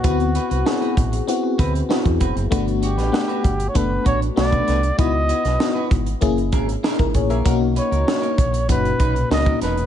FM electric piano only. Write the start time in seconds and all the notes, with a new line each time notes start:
0.03 B3 C4 E4 F#4
0.65 B3 C4 E4 G#4
1.27 B3 C4 E4 F#4
1.89 B3 C4 E4 F#4
2.51 A3 B3 D4 F#4
3.12 A3 B3 D4 F#5
3.74 A3 B3 D4 A4
4.36 A3 B3 D4 F#4
4.98 B3 D#4 E4 F#4
5.60 B3 D#4 E4 F#4
6.21 A#3 C#4 E4 G#4
6.84 D#4 G#4
6.99 E4 A#4
7.15 G#4 C#5
7.30 A#4 E5
7.45 A#3 C#4 D#4 F#4
8.07 A#3 C#4 D#4 F#4
8.68 A#2 C#4 D#4 F#4
9.30 A#3 C#4 D#4 F#4